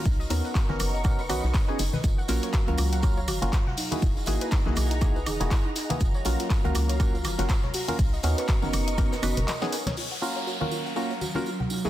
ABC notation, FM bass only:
X:1
M:4/4
L:1/16
Q:"Swing 16ths" 1/4=121
K:F#
V:1 name="FM bass" clef=bass
B,,,2 D,, z2 F,,, F,,,4 B,,, B,,, z2 F,,, z | F,,,2 A,,, z2 C,, C,,4 F,,, F,,, z4 | =E,,,2 G,,, z2 B,,, B,,,4 E,,, E,,, z4 | F,,,2 A,,, z2 C,, C,,4 F,,, F,,, z4 |
B,,,2 D,, z2 F,,, F,,,4 F,,, F,,, z4 | z16 |]